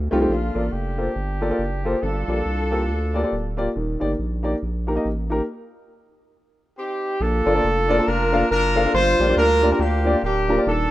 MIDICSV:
0, 0, Header, 1, 4, 480
1, 0, Start_track
1, 0, Key_signature, -2, "major"
1, 0, Tempo, 431655
1, 326, Time_signature, 4, 2, 24, 8
1, 12131, End_track
2, 0, Start_track
2, 0, Title_t, "Horn section"
2, 0, Program_c, 0, 61
2, 326, Note_on_c, 0, 62, 48
2, 328, Note_on_c, 0, 57, 54
2, 339, Note_on_c, 0, 65, 68
2, 778, Note_off_c, 0, 65, 0
2, 790, Note_off_c, 0, 62, 0
2, 804, Note_on_c, 0, 62, 59
2, 809, Note_on_c, 0, 67, 81
2, 1241, Note_off_c, 0, 57, 0
2, 2199, Note_off_c, 0, 62, 0
2, 2246, Note_off_c, 0, 67, 0
2, 2248, Note_on_c, 0, 69, 86
2, 2249, Note_on_c, 0, 62, 67
2, 2252, Note_on_c, 0, 65, 66
2, 3930, Note_off_c, 0, 62, 0
2, 3932, Note_off_c, 0, 65, 0
2, 3974, Note_off_c, 0, 69, 0
2, 7528, Note_on_c, 0, 67, 79
2, 7535, Note_on_c, 0, 60, 53
2, 7536, Note_on_c, 0, 63, 53
2, 7976, Note_off_c, 0, 67, 0
2, 7979, Note_off_c, 0, 60, 0
2, 7980, Note_off_c, 0, 63, 0
2, 8012, Note_on_c, 0, 69, 99
2, 8015, Note_on_c, 0, 62, 75
2, 8017, Note_on_c, 0, 65, 69
2, 8927, Note_off_c, 0, 62, 0
2, 8929, Note_off_c, 0, 65, 0
2, 8971, Note_off_c, 0, 69, 0
2, 8971, Note_on_c, 0, 70, 107
2, 8978, Note_on_c, 0, 65, 79
2, 8981, Note_on_c, 0, 62, 71
2, 9450, Note_off_c, 0, 70, 0
2, 9454, Note_off_c, 0, 62, 0
2, 9455, Note_off_c, 0, 65, 0
2, 9462, Note_on_c, 0, 70, 112
2, 9467, Note_on_c, 0, 62, 77
2, 9468, Note_on_c, 0, 65, 75
2, 9902, Note_off_c, 0, 70, 0
2, 9905, Note_off_c, 0, 62, 0
2, 9905, Note_off_c, 0, 65, 0
2, 9940, Note_on_c, 0, 72, 116
2, 9941, Note_on_c, 0, 65, 84
2, 10381, Note_off_c, 0, 72, 0
2, 10409, Note_off_c, 0, 65, 0
2, 10421, Note_on_c, 0, 62, 80
2, 10423, Note_on_c, 0, 65, 80
2, 10423, Note_on_c, 0, 70, 107
2, 10788, Note_off_c, 0, 70, 0
2, 10801, Note_on_c, 0, 70, 90
2, 10886, Note_off_c, 0, 70, 0
2, 10892, Note_off_c, 0, 62, 0
2, 10901, Note_on_c, 0, 67, 98
2, 10902, Note_on_c, 0, 58, 70
2, 10905, Note_on_c, 0, 62, 67
2, 11331, Note_off_c, 0, 65, 0
2, 11374, Note_off_c, 0, 67, 0
2, 11375, Note_off_c, 0, 58, 0
2, 11379, Note_off_c, 0, 62, 0
2, 11389, Note_on_c, 0, 58, 67
2, 11392, Note_on_c, 0, 62, 67
2, 11392, Note_on_c, 0, 67, 95
2, 11826, Note_off_c, 0, 58, 0
2, 11827, Note_off_c, 0, 62, 0
2, 11827, Note_off_c, 0, 67, 0
2, 11865, Note_on_c, 0, 69, 90
2, 11867, Note_on_c, 0, 62, 68
2, 12131, Note_off_c, 0, 62, 0
2, 12131, Note_off_c, 0, 69, 0
2, 12131, End_track
3, 0, Start_track
3, 0, Title_t, "Upright piano"
3, 0, Program_c, 1, 0
3, 122, Note_on_c, 1, 57, 91
3, 131, Note_on_c, 1, 60, 82
3, 132, Note_on_c, 1, 63, 81
3, 138, Note_on_c, 1, 65, 83
3, 142, Note_on_c, 1, 67, 100
3, 181, Note_off_c, 1, 57, 0
3, 186, Note_off_c, 1, 60, 0
3, 186, Note_off_c, 1, 63, 0
3, 189, Note_off_c, 1, 65, 0
3, 191, Note_off_c, 1, 67, 0
3, 223, Note_on_c, 1, 60, 70
3, 224, Note_on_c, 1, 57, 77
3, 232, Note_on_c, 1, 63, 69
3, 234, Note_on_c, 1, 65, 71
3, 241, Note_on_c, 1, 67, 89
3, 322, Note_off_c, 1, 60, 0
3, 323, Note_off_c, 1, 57, 0
3, 326, Note_on_c, 1, 46, 50
3, 327, Note_off_c, 1, 63, 0
3, 328, Note_off_c, 1, 65, 0
3, 331, Note_off_c, 1, 67, 0
3, 603, Note_on_c, 1, 58, 62
3, 610, Note_on_c, 1, 65, 57
3, 615, Note_on_c, 1, 69, 59
3, 625, Note_on_c, 1, 74, 63
3, 715, Note_off_c, 1, 58, 0
3, 719, Note_off_c, 1, 65, 0
3, 721, Note_off_c, 1, 69, 0
3, 726, Note_off_c, 1, 74, 0
3, 1047, Note_off_c, 1, 46, 0
3, 1085, Note_on_c, 1, 65, 60
3, 1086, Note_on_c, 1, 58, 64
3, 1094, Note_on_c, 1, 69, 57
3, 1098, Note_on_c, 1, 72, 70
3, 1196, Note_off_c, 1, 58, 0
3, 1196, Note_off_c, 1, 65, 0
3, 1200, Note_off_c, 1, 69, 0
3, 1202, Note_off_c, 1, 72, 0
3, 1566, Note_on_c, 1, 58, 76
3, 1570, Note_on_c, 1, 65, 67
3, 1576, Note_on_c, 1, 69, 69
3, 1581, Note_on_c, 1, 74, 81
3, 1622, Note_off_c, 1, 58, 0
3, 1624, Note_off_c, 1, 65, 0
3, 1627, Note_off_c, 1, 69, 0
3, 1630, Note_off_c, 1, 74, 0
3, 1662, Note_on_c, 1, 58, 72
3, 1667, Note_on_c, 1, 65, 69
3, 1677, Note_on_c, 1, 69, 68
3, 1680, Note_on_c, 1, 74, 77
3, 1778, Note_off_c, 1, 58, 0
3, 1780, Note_off_c, 1, 65, 0
3, 1785, Note_off_c, 1, 69, 0
3, 1787, Note_off_c, 1, 74, 0
3, 2052, Note_on_c, 1, 58, 76
3, 2059, Note_on_c, 1, 65, 72
3, 2065, Note_on_c, 1, 69, 69
3, 2071, Note_on_c, 1, 72, 84
3, 2159, Note_off_c, 1, 58, 0
3, 2163, Note_off_c, 1, 65, 0
3, 2166, Note_off_c, 1, 69, 0
3, 2169, Note_off_c, 1, 72, 0
3, 2254, Note_on_c, 1, 43, 56
3, 2535, Note_on_c, 1, 58, 60
3, 2542, Note_on_c, 1, 65, 55
3, 2543, Note_on_c, 1, 67, 56
3, 2552, Note_on_c, 1, 74, 63
3, 2641, Note_off_c, 1, 58, 0
3, 2645, Note_off_c, 1, 65, 0
3, 2645, Note_off_c, 1, 67, 0
3, 2649, Note_off_c, 1, 74, 0
3, 2972, Note_off_c, 1, 43, 0
3, 3014, Note_on_c, 1, 58, 73
3, 3016, Note_on_c, 1, 65, 67
3, 3021, Note_on_c, 1, 67, 73
3, 3031, Note_on_c, 1, 69, 87
3, 3120, Note_off_c, 1, 58, 0
3, 3122, Note_off_c, 1, 65, 0
3, 3124, Note_off_c, 1, 67, 0
3, 3129, Note_off_c, 1, 69, 0
3, 3494, Note_on_c, 1, 58, 81
3, 3496, Note_on_c, 1, 65, 70
3, 3507, Note_on_c, 1, 67, 69
3, 3510, Note_on_c, 1, 74, 89
3, 3547, Note_off_c, 1, 58, 0
3, 3547, Note_off_c, 1, 65, 0
3, 3553, Note_off_c, 1, 67, 0
3, 3555, Note_off_c, 1, 74, 0
3, 3584, Note_on_c, 1, 58, 68
3, 3590, Note_on_c, 1, 65, 62
3, 3593, Note_on_c, 1, 67, 67
3, 3601, Note_on_c, 1, 74, 80
3, 3700, Note_off_c, 1, 58, 0
3, 3703, Note_off_c, 1, 65, 0
3, 3704, Note_off_c, 1, 67, 0
3, 3708, Note_off_c, 1, 74, 0
3, 3970, Note_on_c, 1, 58, 74
3, 3973, Note_on_c, 1, 65, 72
3, 3979, Note_on_c, 1, 67, 76
3, 3986, Note_on_c, 1, 74, 91
3, 4079, Note_off_c, 1, 58, 0
3, 4080, Note_off_c, 1, 65, 0
3, 4083, Note_off_c, 1, 67, 0
3, 4087, Note_off_c, 1, 74, 0
3, 4178, Note_on_c, 1, 51, 69
3, 4446, Note_on_c, 1, 58, 69
3, 4454, Note_on_c, 1, 63, 68
3, 4457, Note_on_c, 1, 67, 64
3, 4462, Note_on_c, 1, 74, 84
3, 4557, Note_off_c, 1, 58, 0
3, 4561, Note_off_c, 1, 63, 0
3, 4563, Note_off_c, 1, 67, 0
3, 4565, Note_off_c, 1, 74, 0
3, 4895, Note_off_c, 1, 51, 0
3, 4925, Note_on_c, 1, 58, 79
3, 4933, Note_on_c, 1, 63, 68
3, 4937, Note_on_c, 1, 67, 69
3, 4943, Note_on_c, 1, 74, 78
3, 5037, Note_off_c, 1, 58, 0
3, 5041, Note_off_c, 1, 63, 0
3, 5043, Note_off_c, 1, 67, 0
3, 5046, Note_off_c, 1, 74, 0
3, 5414, Note_on_c, 1, 58, 72
3, 5422, Note_on_c, 1, 63, 72
3, 5426, Note_on_c, 1, 67, 69
3, 5429, Note_on_c, 1, 70, 81
3, 5468, Note_off_c, 1, 58, 0
3, 5472, Note_off_c, 1, 63, 0
3, 5474, Note_off_c, 1, 67, 0
3, 5475, Note_off_c, 1, 70, 0
3, 5505, Note_on_c, 1, 58, 76
3, 5516, Note_on_c, 1, 63, 65
3, 5520, Note_on_c, 1, 67, 65
3, 5525, Note_on_c, 1, 75, 74
3, 5622, Note_off_c, 1, 58, 0
3, 5627, Note_off_c, 1, 63, 0
3, 5629, Note_off_c, 1, 67, 0
3, 5631, Note_off_c, 1, 75, 0
3, 5892, Note_on_c, 1, 58, 78
3, 5895, Note_on_c, 1, 63, 73
3, 5906, Note_on_c, 1, 67, 72
3, 5912, Note_on_c, 1, 70, 87
3, 6002, Note_off_c, 1, 58, 0
3, 6003, Note_off_c, 1, 63, 0
3, 6009, Note_off_c, 1, 67, 0
3, 6011, Note_off_c, 1, 70, 0
3, 8015, Note_on_c, 1, 46, 66
3, 8288, Note_on_c, 1, 58, 74
3, 8295, Note_on_c, 1, 62, 67
3, 8297, Note_on_c, 1, 65, 70
3, 8302, Note_on_c, 1, 74, 86
3, 8303, Note_on_c, 1, 69, 67
3, 8346, Note_off_c, 1, 58, 0
3, 8350, Note_off_c, 1, 62, 0
3, 8351, Note_off_c, 1, 65, 0
3, 8353, Note_off_c, 1, 74, 0
3, 8354, Note_off_c, 1, 69, 0
3, 8381, Note_on_c, 1, 62, 67
3, 8383, Note_on_c, 1, 58, 69
3, 8387, Note_on_c, 1, 65, 64
3, 8390, Note_on_c, 1, 69, 69
3, 8398, Note_on_c, 1, 74, 79
3, 8501, Note_off_c, 1, 62, 0
3, 8502, Note_off_c, 1, 58, 0
3, 8504, Note_off_c, 1, 65, 0
3, 8505, Note_off_c, 1, 69, 0
3, 8509, Note_off_c, 1, 74, 0
3, 8735, Note_off_c, 1, 46, 0
3, 8768, Note_on_c, 1, 58, 87
3, 8778, Note_on_c, 1, 62, 84
3, 8779, Note_on_c, 1, 65, 85
3, 8785, Note_on_c, 1, 69, 79
3, 8790, Note_on_c, 1, 74, 101
3, 8826, Note_off_c, 1, 58, 0
3, 8831, Note_off_c, 1, 62, 0
3, 8832, Note_off_c, 1, 65, 0
3, 8835, Note_off_c, 1, 69, 0
3, 8837, Note_off_c, 1, 74, 0
3, 8870, Note_on_c, 1, 58, 72
3, 8875, Note_on_c, 1, 62, 65
3, 8879, Note_on_c, 1, 65, 66
3, 8886, Note_on_c, 1, 69, 67
3, 8985, Note_off_c, 1, 58, 0
3, 8988, Note_off_c, 1, 62, 0
3, 8990, Note_off_c, 1, 65, 0
3, 8993, Note_off_c, 1, 69, 0
3, 9256, Note_on_c, 1, 58, 80
3, 9257, Note_on_c, 1, 62, 72
3, 9260, Note_on_c, 1, 65, 73
3, 9265, Note_on_c, 1, 69, 74
3, 9269, Note_on_c, 1, 77, 84
3, 9364, Note_off_c, 1, 58, 0
3, 9364, Note_off_c, 1, 62, 0
3, 9366, Note_off_c, 1, 65, 0
3, 9369, Note_off_c, 1, 69, 0
3, 9370, Note_off_c, 1, 77, 0
3, 9733, Note_on_c, 1, 58, 82
3, 9739, Note_on_c, 1, 62, 78
3, 9743, Note_on_c, 1, 69, 74
3, 9744, Note_on_c, 1, 65, 74
3, 9753, Note_on_c, 1, 77, 90
3, 9788, Note_off_c, 1, 58, 0
3, 9791, Note_off_c, 1, 62, 0
3, 9793, Note_off_c, 1, 69, 0
3, 9794, Note_off_c, 1, 65, 0
3, 9798, Note_off_c, 1, 77, 0
3, 9841, Note_on_c, 1, 58, 69
3, 9841, Note_on_c, 1, 62, 67
3, 9849, Note_on_c, 1, 65, 63
3, 9854, Note_on_c, 1, 77, 74
3, 9855, Note_on_c, 1, 69, 65
3, 9933, Note_off_c, 1, 58, 0
3, 9933, Note_off_c, 1, 62, 0
3, 9937, Note_off_c, 1, 65, 0
3, 9940, Note_off_c, 1, 69, 0
3, 9940, Note_off_c, 1, 77, 0
3, 9953, Note_on_c, 1, 43, 62
3, 10219, Note_on_c, 1, 58, 72
3, 10225, Note_on_c, 1, 62, 66
3, 10228, Note_on_c, 1, 65, 71
3, 10238, Note_on_c, 1, 67, 69
3, 10242, Note_on_c, 1, 74, 77
3, 10271, Note_off_c, 1, 58, 0
3, 10274, Note_off_c, 1, 62, 0
3, 10276, Note_off_c, 1, 65, 0
3, 10281, Note_off_c, 1, 67, 0
3, 10283, Note_off_c, 1, 74, 0
3, 10318, Note_on_c, 1, 58, 76
3, 10319, Note_on_c, 1, 62, 71
3, 10326, Note_on_c, 1, 65, 71
3, 10329, Note_on_c, 1, 67, 69
3, 10333, Note_on_c, 1, 74, 84
3, 10428, Note_off_c, 1, 58, 0
3, 10429, Note_off_c, 1, 62, 0
3, 10433, Note_off_c, 1, 65, 0
3, 10434, Note_off_c, 1, 67, 0
3, 10436, Note_off_c, 1, 74, 0
3, 10663, Note_off_c, 1, 43, 0
3, 10698, Note_on_c, 1, 58, 80
3, 10703, Note_on_c, 1, 62, 69
3, 10704, Note_on_c, 1, 65, 72
3, 10705, Note_on_c, 1, 67, 73
3, 10716, Note_on_c, 1, 74, 88
3, 10751, Note_off_c, 1, 58, 0
3, 10753, Note_off_c, 1, 62, 0
3, 10754, Note_off_c, 1, 65, 0
3, 10754, Note_off_c, 1, 67, 0
3, 10760, Note_off_c, 1, 74, 0
3, 10792, Note_on_c, 1, 58, 77
3, 10797, Note_on_c, 1, 62, 65
3, 10805, Note_on_c, 1, 65, 69
3, 10805, Note_on_c, 1, 67, 66
3, 10810, Note_on_c, 1, 70, 81
3, 10905, Note_off_c, 1, 58, 0
3, 10908, Note_off_c, 1, 62, 0
3, 10912, Note_off_c, 1, 65, 0
3, 10912, Note_off_c, 1, 67, 0
3, 10914, Note_off_c, 1, 70, 0
3, 11177, Note_on_c, 1, 58, 81
3, 11179, Note_on_c, 1, 62, 73
3, 11184, Note_on_c, 1, 65, 72
3, 11193, Note_on_c, 1, 67, 72
3, 11194, Note_on_c, 1, 74, 86
3, 11284, Note_off_c, 1, 58, 0
3, 11285, Note_off_c, 1, 62, 0
3, 11287, Note_off_c, 1, 65, 0
3, 11292, Note_off_c, 1, 67, 0
3, 11293, Note_off_c, 1, 74, 0
3, 11660, Note_on_c, 1, 58, 83
3, 11666, Note_on_c, 1, 62, 72
3, 11667, Note_on_c, 1, 65, 71
3, 11671, Note_on_c, 1, 67, 75
3, 11678, Note_on_c, 1, 70, 89
3, 11712, Note_off_c, 1, 58, 0
3, 11714, Note_off_c, 1, 62, 0
3, 11715, Note_off_c, 1, 65, 0
3, 11717, Note_off_c, 1, 67, 0
3, 11720, Note_off_c, 1, 70, 0
3, 11751, Note_on_c, 1, 62, 62
3, 11752, Note_on_c, 1, 58, 69
3, 11759, Note_on_c, 1, 65, 67
3, 11765, Note_on_c, 1, 67, 66
3, 11769, Note_on_c, 1, 74, 79
3, 11848, Note_off_c, 1, 58, 0
3, 11848, Note_off_c, 1, 62, 0
3, 11852, Note_off_c, 1, 65, 0
3, 11853, Note_on_c, 1, 51, 68
3, 11855, Note_off_c, 1, 67, 0
3, 11857, Note_off_c, 1, 74, 0
3, 12131, Note_off_c, 1, 51, 0
3, 12131, End_track
4, 0, Start_track
4, 0, Title_t, "Sub bass"
4, 0, Program_c, 2, 38
4, 135, Note_on_c, 2, 36, 85
4, 298, Note_off_c, 2, 36, 0
4, 321, Note_on_c, 2, 34, 92
4, 566, Note_off_c, 2, 34, 0
4, 612, Note_on_c, 2, 33, 94
4, 776, Note_off_c, 2, 33, 0
4, 801, Note_on_c, 2, 29, 82
4, 1210, Note_off_c, 2, 29, 0
4, 1285, Note_on_c, 2, 31, 89
4, 1692, Note_off_c, 2, 31, 0
4, 1763, Note_on_c, 2, 30, 82
4, 2171, Note_off_c, 2, 30, 0
4, 2251, Note_on_c, 2, 31, 102
4, 2492, Note_off_c, 2, 31, 0
4, 2531, Note_on_c, 2, 34, 86
4, 2695, Note_off_c, 2, 34, 0
4, 2728, Note_on_c, 2, 36, 75
4, 3202, Note_on_c, 2, 38, 93
4, 3219, Note_off_c, 2, 36, 0
4, 3612, Note_off_c, 2, 38, 0
4, 3690, Note_on_c, 2, 26, 82
4, 4096, Note_off_c, 2, 26, 0
4, 4178, Note_on_c, 2, 27, 107
4, 4417, Note_off_c, 2, 27, 0
4, 4464, Note_on_c, 2, 31, 94
4, 4623, Note_off_c, 2, 31, 0
4, 4657, Note_on_c, 2, 34, 82
4, 5061, Note_off_c, 2, 34, 0
4, 5140, Note_on_c, 2, 34, 84
4, 5543, Note_off_c, 2, 34, 0
4, 5616, Note_on_c, 2, 33, 80
4, 6021, Note_off_c, 2, 33, 0
4, 8007, Note_on_c, 2, 34, 113
4, 8252, Note_off_c, 2, 34, 0
4, 8296, Note_on_c, 2, 31, 93
4, 8460, Note_off_c, 2, 31, 0
4, 8494, Note_on_c, 2, 29, 101
4, 8900, Note_off_c, 2, 29, 0
4, 8978, Note_on_c, 2, 29, 94
4, 9382, Note_off_c, 2, 29, 0
4, 9460, Note_on_c, 2, 30, 95
4, 9863, Note_off_c, 2, 30, 0
4, 9936, Note_on_c, 2, 31, 115
4, 10177, Note_off_c, 2, 31, 0
4, 10222, Note_on_c, 2, 34, 89
4, 10383, Note_off_c, 2, 34, 0
4, 10411, Note_on_c, 2, 38, 99
4, 10818, Note_off_c, 2, 38, 0
4, 10886, Note_on_c, 2, 38, 110
4, 11295, Note_off_c, 2, 38, 0
4, 11371, Note_on_c, 2, 26, 91
4, 11778, Note_off_c, 2, 26, 0
4, 11855, Note_on_c, 2, 27, 107
4, 12096, Note_off_c, 2, 27, 0
4, 12131, End_track
0, 0, End_of_file